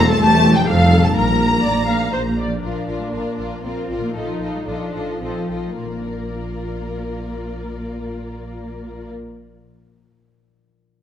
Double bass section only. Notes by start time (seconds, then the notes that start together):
Already playing: E2
0.20 E2
0.67 F2
1.16 A#1
1.63 A#1
2.13 A#1
2.62 A#1
2.87 A#1
3.12 A#1
3.38 A#1
3.63 A#1
3.89 A#1
4.15 A#1
4.40 A#1
4.66 A#1
4.93 A#1
5.20 A#1
5.50 A#1
5.78 A#1